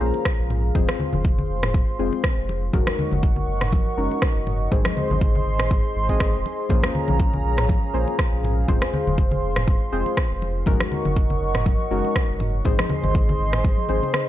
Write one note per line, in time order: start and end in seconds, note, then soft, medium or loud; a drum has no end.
0.00 0.12 A#1 medium
0.00 0.72 A#3 medium
0.00 0.73 C#4 medium
0.00 0.72 C#4 medium
0.00 0.72 F4 medium
0.00 2.69 G#4 medium
0.00 0.72 G#4 medium
0.00 0.72 C5 medium
0.00 2.69 F5 medium
0.00 0.73 A#5 loud
0.14 muted conga soft
0.25 kick loud
0.25 cross-stick medium
0.39 0.72 A#1 medium
0.50 mid tom medium
0.50 muted conga medium
0.75 0.86 F1 loud
0.75 1.96 G#3 medium
0.75 1.96 C4 medium
0.75 1.96 F4 medium
0.75 1.96 G#4 medium
0.75 1.96 C5 loud
0.75 2.72 C5 medium
0.75 2.72 C6 medium
0.75 kick loud
0.75 mid tom medium
0.75 high conga loud
0.88 cross-stick loud
0.88 muted conga medium
0.88 high conga loud
1.00 low conga loud
1.13 1.46 F1 medium
1.13 high conga medium
1.13 low conga loud
1.24 kick loud
1.24 muted conga soft
1.38 low conga medium
1.49 1.84 F1 medium
1.63 cross-stick medium
1.63 mid tom medium
1.63 muted conga medium
1.74 kick loud
1.99 2.10 F1 loud
1.99 2.71 G#3 medium
1.99 2.71 C4 medium
1.99 2.71 F4 medium
1.99 2.71 G#4 medium
1.99 2.71 C5 medium
2.13 muted conga soft
2.24 kick loud
2.24 cross-stick medium
2.37 2.70 F1 medium
2.49 muted conga medium
2.73 2.84 F#1 loud
2.73 3.95 G#3 medium
2.73 3.95 C#4 medium
2.73 3.95 D#4 medium
2.73 3.95 F#4 medium
2.73 4.70 A#4 medium
2.73 3.95 A#4 medium
2.73 6.66 D#5 medium
2.73 4.70 F#5 medium
2.73 4.70 C#6 medium
2.73 kick loud
2.73 mid tom medium
2.73 high conga loud
2.87 cross-stick loud
2.87 muted conga soft
2.87 high conga loud
2.99 low conga loud
3.11 3.44 F#1 medium
3.11 high conga medium
3.11 low conga medium
3.23 kick loud
3.23 muted conga soft
3.36 low conga medium
3.48 3.82 F#1 medium
3.61 cross-stick medium
3.61 mid tom medium
3.61 muted conga soft
3.72 kick loud
3.72 high conga medium
3.97 4.08 F#1 loud
3.97 4.69 G#3 medium
3.97 4.69 C#4 medium
3.97 4.69 D#4 medium
3.97 4.69 F#4 medium
3.97 4.69 A#4 medium
4.11 muted conga soft
4.22 kick loud
4.22 cross-stick loud
4.35 4.68 F#1 medium
4.47 mid tom medium
4.47 muted conga medium
4.72 4.83 G#1 loud
4.72 5.93 G#3 medium
4.72 5.93 C4 medium
4.72 5.93 D#4 medium
4.72 5.93 G#4 medium
4.72 10.63 G#4 medium
4.72 5.93 C5 loud
4.72 6.68 C5 medium
4.72 6.68 C6 loud
4.72 kick loud
4.72 mid tom medium
4.72 high conga medium
4.85 cross-stick medium
4.85 muted conga soft
4.85 high conga loud
4.97 low conga loud
5.10 5.43 G#1 medium
5.10 high conga medium
5.10 low conga medium
5.21 kick loud
5.21 muted conga soft
5.35 low conga medium
5.46 5.80 G#1 medium
5.59 cross-stick medium
5.59 mid tom medium
5.59 muted conga medium
5.71 kick loud
5.96 6.36 G#1 medium
6.09 6.67 G#3 medium
6.09 6.67 C4 medium
6.09 6.67 D#4 medium
6.09 6.67 G#4 medium
6.09 6.67 D#5 medium
6.09 kick medium
6.09 muted conga soft
6.20 kick loud
6.20 cross-stick medium
6.34 6.43 D#1 medium
6.46 muted conga soft
6.69 6.81 A#1 medium
6.69 7.91 A#3 medium
6.69 7.91 C#4 medium
6.69 8.67 C#4 medium
6.69 7.91 F4 medium
6.69 7.91 G#4 medium
6.69 7.91 C5 medium
6.69 10.63 F5 medium
6.69 8.66 A#5 medium
6.69 kick loud
6.69 mid tom medium
6.69 high conga medium
6.83 cross-stick medium
6.83 muted conga soft
6.83 high conga loud
6.95 low conga medium
7.08 7.41 A#1 medium
7.08 high conga medium
7.08 low conga medium
7.20 kick loud
7.20 muted conga soft
7.33 low conga medium
7.44 7.79 A#1 medium
7.57 cross-stick medium
7.57 mid tom medium
7.57 muted conga soft
7.69 kick loud
7.69 high conga medium
7.94 8.05 A#1 loud
7.94 8.66 A#3 medium
7.94 8.66 C#4 medium
7.94 8.66 F4 medium
7.94 8.66 G#4 medium
7.94 8.66 C5 medium
8.08 muted conga soft
8.19 kick loud
8.19 cross-stick medium
8.32 8.65 A#1 medium
8.44 mid tom medium
8.44 muted conga medium
8.68 8.79 F1 loud
8.68 9.90 G#3 medium
8.68 9.90 C4 medium
8.68 9.90 F4 medium
8.68 9.90 G#4 medium
8.68 9.90 C5 loud
8.68 10.65 C5 medium
8.68 10.65 C6 loud
8.68 kick loud
8.68 mid tom medium
8.68 high conga medium
8.82 cross-stick medium
8.82 muted conga medium
8.82 high conga medium
8.94 low conga medium
9.07 9.39 F1 medium
9.07 high conga medium
9.07 low conga medium
9.18 kick loud
9.18 muted conga soft
9.32 low conga medium
9.43 9.77 F1 medium
9.56 cross-stick medium
9.56 mid tom medium
9.56 muted conga soft
9.68 kick loud
9.92 10.03 F1 medium
9.92 10.64 G#3 medium
9.92 10.64 C4 medium
9.92 10.64 F4 medium
9.92 10.64 G#4 medium
9.92 10.64 C5 medium
10.06 muted conga soft
10.17 kick loud
10.17 cross-stick medium
10.31 10.63 F1 medium
10.42 muted conga soft
10.66 10.78 F#1 loud
10.66 11.88 G#3 medium
10.66 11.88 C#4 medium
10.66 11.88 D#4 medium
10.66 11.88 F#4 medium
10.66 12.63 A#4 medium
10.66 11.88 A#4 loud
10.66 12.63 D#5 medium
10.66 12.63 F#5 medium
10.66 12.63 C#6 loud
10.66 kick loud
10.66 mid tom medium
10.66 high conga medium
10.80 cross-stick medium
10.80 muted conga medium
10.80 high conga medium
10.92 low conga medium
11.05 11.38 F#1 medium
11.05 high conga medium
11.05 low conga medium
11.16 kick loud
11.16 muted conga soft
11.30 low conga medium
11.41 11.75 F#1 medium
11.54 cross-stick medium
11.54 mid tom medium
11.54 muted conga medium
11.66 kick loud
11.66 high conga medium
11.91 12.02 F#1 medium
11.91 12.63 G#3 medium
11.91 12.63 C#4 medium
11.91 12.62 D#4 medium
11.91 12.63 F#4 medium
11.91 12.63 A#4 medium
12.05 muted conga soft
12.16 kick loud
12.16 cross-stick medium
12.29 12.62 F#1 medium
12.40 mid tom medium
12.40 muted conga medium
12.65 12.76 G#1 loud
12.65 13.87 G#3 medium
12.65 13.87 C4 medium
12.65 13.87 D#4 medium
12.65 14.29 G#4 medium
12.65 13.87 G#4 medium
12.65 14.29 C5 medium
12.65 13.87 C5 loud
12.65 14.29 D#5 medium
12.65 14.29 C6 medium
12.65 kick loud
12.65 mid tom medium
12.65 high conga medium
12.79 cross-stick medium
12.79 muted conga soft
12.79 high conga medium
12.90 low conga loud
13.04 13.36 G#1 medium
13.04 high conga medium
13.04 low conga medium
13.15 kick loud
13.15 muted conga soft
13.29 low conga medium
13.39 13.74 G#1 medium
13.53 cross-stick medium
13.53 mid tom medium
13.53 muted conga medium
13.64 kick loud
13.64 high tom medium
13.78 high tom medium
13.89 14.00 G#1 medium
13.89 14.29 G#3 medium
13.89 14.29 C4 medium
13.89 14.29 D#4 medium
13.89 14.29 G#4 medium
13.89 14.29 C5 medium
13.89 high conga medium
14.03 mid tom medium
14.03 muted conga soft
14.14 cross-stick medium
14.14 mid tom medium